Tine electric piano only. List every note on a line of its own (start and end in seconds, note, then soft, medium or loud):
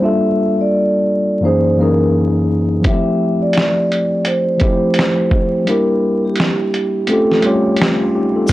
0.00 1.01 G3 medium
0.00 1.01 A#3 medium
0.00 1.02 D4 medium
0.00 1.03 F4 medium
0.05 1.04 A4 medium
1.41 1.72 F#2 medium
1.41 1.72 E3 medium
1.41 1.73 A#3 medium
1.41 1.73 C#4 medium
1.45 1.74 D#4 medium
1.45 1.75 G#4 medium
1.76 2.52 F#2 medium
1.76 2.53 E3 medium
1.76 2.53 A#3 medium
1.76 2.54 C#4 medium
1.81 2.54 D#4 medium
1.81 2.55 G#4 medium
2.82 3.83 F3 medium
2.82 2.92 G3 medium
2.82 3.85 C4 medium
2.86 3.87 A3 medium
2.86 3.85 E4 medium
2.86 3.86 G4 medium
4.58 5.34 F3 medium
4.58 5.35 A3 medium
4.58 5.35 C4 medium
4.62 5.36 E4 medium
4.62 5.37 G4 medium
5.65 6.66 G3 medium
5.65 6.67 A#3 medium
5.65 6.67 D4 medium
5.69 6.68 E4 medium
5.69 6.69 G4 medium
7.08 7.38 A3 medium
7.08 7.38 C4 medium
7.08 7.39 C#4 medium
7.12 7.40 F4 medium
7.12 7.40 G4 medium
7.41 7.79 G3 medium
7.41 8.17 A3 medium
7.41 7.79 C#4 medium
7.46 7.80 F4 medium
7.46 7.81 G4 medium
8.02 8.15 C#4 medium
8.02 8.15 F4 medium
8.15 8.35 D#4 medium
8.15 8.35 G4 medium
8.36 8.53 F4 medium
8.36 8.53 A4 medium
8.48 8.53 G3 medium
8.48 8.53 C4 medium